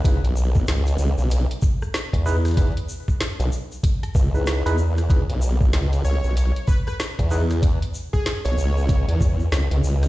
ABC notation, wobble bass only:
X:1
M:4/4
L:1/16
Q:"Swing 16ths" 1/4=95
K:C#m
V:1 name="Wobble bass" clef=bass
C,, B,,,3 C,,2 C,, B,,,2 z4 E,,3- | E,, z4 B,,, z4 C,,3 E,,3 | C,, B,,,3 C,,2 C,, B,,,2 z4 E,,3- | E,, z4 B,,, C,,3 E,,3 C,, C,, C,,2 |]